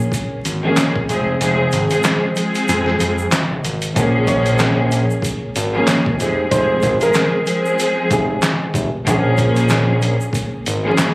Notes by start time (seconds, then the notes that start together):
Already playing: F3 A#3 C#4 G#4
0.00 shaker
0.12 kick, closed hi-hat, shaker
0.45 G#1, closed hi-hat, shaker
0.62 F3 A#3 C#4 G#4
0.77 snare, clap, closed hi-hat, shaker
0.96 kick
1.08 F1 F3 G#3 C4 G#4, closed hi-hat, shaker
1.39 F1 F3 G#3 C4 G#4, closed hi-hat, shaker
1.72 G#1, closed hi-hat, shaker
1.89 F3 G#3 C4 G#4, closed hi-hat, shaker
2.03 snare, clap, closed hi-hat, shaker
2.35 F3 G#3 C4 G#4, closed hi-hat, shaker
2.55 closed hi-hat, shaker
2.68 F2, closed hi-hat, shaker
2.86 snare
3.00 F2, closed hi-hat, shaker
3.18 shaker
3.32 snare, clap, closed hi-hat, shaker
3.50 F1
3.64 G#1, closed hi-hat, shaker
3.82 closed hi-hat, shaker
3.95 A#1 F3 A#3 C#4 G#4, kick, closed hi-hat, shaker
4.27 C#5, kick, closed hi-hat, shaker
4.46 closed hi-hat, shaker
4.59 snare, clap, closed hi-hat, shaker
4.92 closed hi-hat, shaker
5.10 shaker
5.22 kick, closed hi-hat, shaker
5.56 G#1, closed hi-hat, shaker
5.73 F3 A#3 C#4 G#4
5.87 snare, clap, closed hi-hat, shaker
6.06 kick
6.18 F1 F3 G#3 C4 G#4, closed hi-hat, shaker
6.50 F1 F3 G#3 C4 G#4 C5, kick, closed hi-hat, shaker
6.82 G#1, kick, closed hi-hat, shaker
6.99 F3 G#3 C4 G#4 A#4, closed hi-hat, shaker
7.14 snare, clap, closed hi-hat, shaker
7.45 F3 G#3 C4 G#4, closed hi-hat, shaker
7.65 shaker
7.79 closed hi-hat, shaker
8.11 F1 G#4, kick, closed hi-hat, shaker
8.42 snare, clap, closed hi-hat, shaker
8.74 F1, kick, closed hi-hat, shaker
9.06 A#1 F3 A#3 C#4 G#4, kick, closed hi-hat, shaker
9.37 kick, closed hi-hat, shaker
9.56 closed hi-hat, shaker
9.69 snare, clap, closed hi-hat, shaker
10.02 closed hi-hat, shaker
10.21 shaker
10.33 kick, closed hi-hat, shaker
10.66 G#1, closed hi-hat, shaker
10.84 F3 A#3 C#4 G#4
10.98 snare, clap, closed hi-hat, shaker